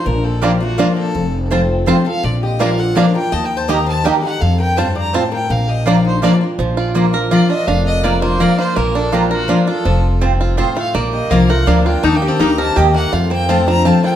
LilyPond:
<<
  \new Staff \with { instrumentName = "Fiddle" } { \time 3/4 \key bes \major \tempo 4 = 165 bes'8 a'8 g'8 ges'8 f'8 a'8~ | a'4 r4 c''8 f''8 | d''8 ees''8 f''8 ges''8 f''8 g''8 | \tuplet 3/2 { a''8 g''8 a''8 } bes''8 a''8 g''8 ges''8 |
f''8 g''8 a''8 bes''8 a''8 g''8 | f''8 ees''8 d''8 c''8 d''8 r8 | r2 d''8 ees''8 | f''8 ees''8 d''8 c''8 d''8 c''8 |
bes'8 a'8 g'8 ges'8 f'8 a'8~ | a'4 r4 c''8 f''8 | d''8 ees''8 f''8 ges''8 f''8 g''8 | \tuplet 3/2 { a''8 g''8 a''8 } bes''8 a''8 g''8 ges''8 |
f''8 g''8 a''8 bes''8 a''8 g''8 | }
  \new Staff \with { instrumentName = "Mandolin" } { \time 3/4 \key bes \major r4 <bes f' d'' bes''>16 r8. <bes f' d'' bes''>16 r8. | r4 <c' f' c'' a''>16 r8. <c' f' c'' a''>16 r8. | r4 <bes f' d'' bes''>16 r8. <bes f' d'' bes''>16 r8. | r4 <bes g' ees'' bes''>16 r8. <bes g' ees'' bes''>16 r8. |
r4 <c' f' c'' a''>16 r8. <c' f' c'' a''>16 r8. | r4 <bes f' d'' bes''>16 r8. <bes f' d'' bes''>16 r8. | r4 <bes f' d'' bes''>16 r8. <bes f' d'' bes''>16 r8. | r4 <bes f' d'' bes''>16 r8. <bes f' d'' bes''>16 r8. |
r4 <bes f' d'' bes''>16 r8. <bes f' d'' bes''>16 r8. | r4 <c' f' c'' a''>16 r8. <c' f' c'' a''>16 r8. | r4 <bes f' d'' bes''>16 r8. <bes f' d'' bes''>16 r8. | r4 <bes g' ees'' bes''>16 r8. <bes g' ees'' bes''>16 r8. |
r4 <c' f' c'' a''>16 r8. <c' f' c'' a''>16 r8. | }
  \new Staff \with { instrumentName = "Five-string banjo" } { \time 3/4 \key bes \major r4 <bes d' f'>8 r8 <bes d' f'>8 r8 | r4 <c' f'>8 r8 <c' f'>8 r8 | r4 <bes d' f'>8 r8 <bes d' f'>8 r8 | r4 <bes ees' g'>8 r8 <bes ees' g'>8 r8 |
r4 <c' f'>8 r8 <c' f'>8 r8 | r4 <bes d' f'>8 r8 <bes d' f'>8 r8 | f8 f'8 bes8 bes'8 f'8 d'8 | d'4 f'8 bes8 bes'8 f'8 |
bes8 d'8 f'8 bes'8 d'8 f'8 | f4 c'8 f'8 f'8 f'8 | bes4 f'8 bes'8 d'8 f'8 | bes8 g'8 bes8 bes'8 g'8 bes8 |
f'8 c'8 f'8 c'8 f'8 f'8 | }
  \new Staff \with { instrumentName = "Resonator guitar played with a steel bar" } { \time 3/4 \key bes \major d'8 c'8 bes8 a8 bes8 c'8~ | c'4 r4 f'8 a'8 | f'8 g'8 bes'8 a'8 bes'8 bes'8 | \tuplet 3/2 { ees''8 bes'8 c''8 } ees''8 c''8 bes'8 a'8 |
a'8 bes'8 c''8 d''8 c''8 bes'8 | bes'8 g'8 f'8 ees'8 f'8 r8 | r2. | r2. |
r2. | r2 f8 a8 | f8 g8 bes8 a8 bes8 bes8 | \tuplet 3/2 { ees'8 bes8 c'8 } ees'8 c'8 bes8 a8 |
a8 bes8 c'8 d'8 c'8 bes8 | }
  \new Staff \with { instrumentName = "Steel-string acoustic guitar" } { \time 3/4 \key bes \major << { r4 <f bes d' f'>8 <d' f'>8 <f bes d' f'>4 | r4 <f a c' f'>4 <f a c' f'>8 <c' f'>8 | r4 <f bes d' f'>4 <f bes d' f'>8 <d' f'>8 | r4 <ees bes ees' g'>4 <ees bes ees' g'>8 <ees' g'>8 |
r2. | r4 <f bes d' f'>4 <f bes d' f'>8 <d' f'>8 | r4 <f bes d' f'>8 <d' f'>8 <f bes d' f'>8 <d' f'>8 | r4 <f bes d' f'>8 <d' f'>8 <f bes d' f'>4 |
r4 <f bes d' f'>8 <d' f'>8 <f bes d' f'>8 <d' f'>8 | r2. | r4 <f bes d' f'>8 <d' f'>8 <f bes d' f'>8 <d' f'>8 | r4 <ees bes ees' g'>8 <ees' g'>8 <ees bes ees' g'>8 <ees' g'>8 |
r4 <f a c' f'>8 <c' f'>8 <f a c' f'>4 | } \\ { bes,2 r4 | f,2 r4 | bes,2 r4 | ees2 r4 |
f,4 g,4 a,4 | bes,2 r4 | bes,2 r4 | f,2 r4 |
bes,2 r4 | f,4 g,4 a,4 | bes,2 r4 | ees2 r4 |
f,2 r4 | } >> }
  \new Staff \with { instrumentName = "Upright bass" } { \clef bass \time 3/4 \key bes \major bes,,2. | f,,2. | bes,,2. | ees,2. |
f,2. | bes,,2. | bes,,2. | f,,2. |
bes,,2. | f,,2. | bes,,4 c,4 d,4 | ees,4 d,4 ees,4 |
f,2. | }
>>